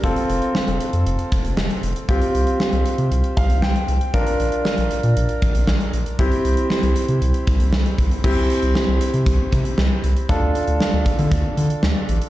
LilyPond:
<<
  \new Staff \with { instrumentName = "Grand piano" } { \time 4/4 \key c \mixolydian \tempo 4 = 117 << { r1 | r2 r8 f''8 g''4 | r1 | r1 |
r1 | r1 | } \\ { <c' f' a'>1 | <c' f' g'>1 | <d' f' bes'>1 | <c' e' g'>1 |
<c' e' g'>1 | <d' f' a'>1 | } >> }
  \new Staff \with { instrumentName = "Analog synth bass" } { \clef bass \time 4/4 \key c \mixolydian f,,16 r16 f,,16 r8 f,,16 r16 f,16 f,,16 r16 f,,16 f,,16 f,,16 r16 f,,16 r16 | c,16 r16 c,16 r8 c,16 r16 c16 c,16 r16 c,16 c,16 c,16 r16 c,16 r16 | bes,,16 r16 bes,,16 r8 bes,,16 r16 bes,16 bes,,16 r16 bes,,16 bes,,16 bes,,16 r16 bes,,16 r16 | c,16 r16 c,16 r8 c,16 r16 c16 c,16 r16 c,16 c,16 c,16 r16 c,16 r16 |
c,16 c,16 r16 c,16 r16 c,16 r16 c16 c,16 r16 c16 r16 c,16 r16 c,16 r16 | d,16 d,16 r16 d,16 r16 d,16 r16 d16 d,16 r16 d16 r16 d,16 r16 a,,16 r16 | }
  \new DrumStaff \with { instrumentName = "Drums" } \drummode { \time 4/4 <hh bd>16 hh16 hh16 hh16 sn16 hh16 hh16 hh16 hh16 hh16 <hh bd>16 hh16 sn16 hh16 hh16 hh16 | <hh bd>16 hh16 hh16 hh16 sn16 hh16 hh16 hh16 hh16 hh16 <hh bd>16 hh16 sn16 hh16 hh16 hh16 | <hh bd>16 hh16 hh16 hh16 sn16 hh16 hh16 hh16 hh16 hh16 <hh bd>16 hh16 sn16 hh16 hh16 hh16 | <hh bd>16 hh16 hh16 hh16 sn16 hh16 hh16 hh16 hh16 hh16 <hh bd>16 hh16 sn16 hh16 <hh bd>16 hh16 |
<cymc bd>8 hh16 hh16 sn8 hh16 hh16 <hh bd>8 <hh bd>16 hh16 sn8 hh16 hh16 | <hh bd>8 hh16 hh16 sn8 <hh bd>16 hh16 <hh bd>8 hh16 hh16 sn8 hh16 hh16 | }
>>